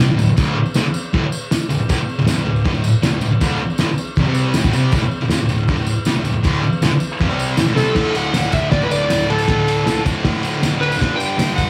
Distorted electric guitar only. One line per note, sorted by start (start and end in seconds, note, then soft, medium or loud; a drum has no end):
0.10 0.17 D2 medium
0.10 0.18 A2 medium
0.18 0.28 D2 medium
0.18 0.28 A2 medium
0.29 muted distorted electric guitar stroke medium
0.37 0.54 D2 loud
0.37 0.56 A2 loud
0.37 0.56 D3 medium
0.56 muted distorted electric guitar stroke medium
0.75 0.84 G2 medium
0.75 0.85 D3 loud
0.84 muted distorted electric guitar stroke medium
1.13 1.22 D2 medium
1.13 1.22 A2 loud
1.70 1.79 D2 medium
1.70 1.79 A2 medium
1.80 muted distorted electric guitar stroke medium
1.89 1.98 D2 medium
1.89 1.98 A2 loud
1.99 muted distorted electric guitar stroke medium
2.19 2.27 D2 medium
2.19 2.28 A2 medium
2.27 2.36 F2 medium
2.27 2.36 C3 medium
2.37 2.44 D2 medium
2.37 2.45 A2 medium
2.46 2.61 D2 medium
2.46 2.61 A2 medium
2.65 2.74 G2 loud
2.65 2.74 D3 loud
2.74 2.90 D2 medium
2.74 2.90 A2 medium
3.03 3.12 C3 medium
3.03 3.12 G3 loud
3.12 3.20 D2 medium
3.12 3.21 A2 medium
3.22 3.31 D2 medium
3.22 3.31 A2 medium
3.32 muted distorted electric guitar stroke medium
3.41 3.59 D2 medium
3.41 3.60 A2 medium
3.41 3.60 D3 loud
3.61 muted distorted electric guitar stroke medium
3.79 3.88 G2 loud
3.79 3.88 D3 loud
3.90 muted distorted electric guitar stroke medium
4.18 4.26 F2 medium
4.18 4.25 C3 loud
4.27 4.54 C3 medium
4.27 4.54 G3 medium
4.27 4.55 C4 medium
4.55 4.63 A2 medium
4.55 4.64 E3 loud
4.64 4.73 D2 medium
4.64 4.73 A2 loud
4.73 4.92 C3 medium
4.73 4.92 G3 loud
4.73 4.92 C4 loud
4.92 5.01 D2 medium
4.92 5.02 A2 loud
5.02 muted distorted electric guitar stroke medium
5.21 5.30 D2 medium
5.21 5.31 A2 medium
5.30 5.39 F2 medium
5.30 5.40 C3 loud
5.40 5.49 D2 medium
5.40 5.49 A2 medium
5.50 5.65 D2 medium
5.50 5.65 A2 medium
5.69 5.77 G2 loud
5.69 5.78 D3 loud
5.79 5.93 D2 medium
5.79 5.93 A2 medium
6.06 6.15 C3 medium
6.06 6.15 G3 loud
6.15 6.23 D2 medium
6.15 6.24 A2 medium
6.25 6.33 D2 medium
6.25 6.35 A2 medium
6.34 muted distorted electric guitar stroke medium
6.43 6.62 D2 medium
6.43 6.62 A2 medium
6.43 6.63 D3 loud
6.63 muted distorted electric guitar stroke medium
6.82 6.91 G2 medium
6.82 6.91 D3 loud
6.91 muted distorted electric guitar stroke medium
7.20 7.29 F2 loud
7.20 7.29 C3 loud
7.30 7.57 C3 medium
7.30 7.58 G3 medium
7.30 7.58 C4 loud
7.58 7.66 A2 medium
7.58 7.67 E3 loud
7.66 7.76 D2 medium
7.66 7.76 A2 loud
7.76 7.94 C3 medium
7.76 7.95 G3 loud
7.76 7.96 C4 loud
7.94 8.33 D2 medium
7.94 8.33 A2 loud
7.94 8.36 D3 medium
8.33 8.69 D2 medium
8.33 8.71 A2 medium
8.33 8.72 D3 medium
8.71 9.08 D2 medium
8.71 8.91 A2 medium
8.71 8.88 D3 medium
8.89 9.10 A2 medium
8.89 9.11 D3 medium
9.09 9.45 D2 loud
9.09 9.31 A2 loud
9.09 9.27 D3 loud
9.28 9.46 A2 medium
9.28 9.48 D3 medium
9.46 9.84 D2 medium
9.46 9.86 A2 medium
9.46 9.88 D3 loud
9.85 10.23 D2 medium
9.85 10.24 A2 medium
9.85 10.25 D3 medium
10.24 10.59 D2 medium
10.24 10.45 A2 medium
10.24 10.41 D3 medium
10.42 10.61 A2 medium
10.42 10.63 D3 medium
10.61 10.98 D2 medium
10.61 10.82 A2 loud
10.61 10.79 D3 medium
10.80 10.99 A2 medium
10.80 10.99 D3 medium
10.98 11.36 G2 medium
10.98 11.37 D3 medium
10.98 11.40 G3 medium
11.37 11.70 G2 medium
11.37 11.70 D3 medium
11.37 11.70 G3 medium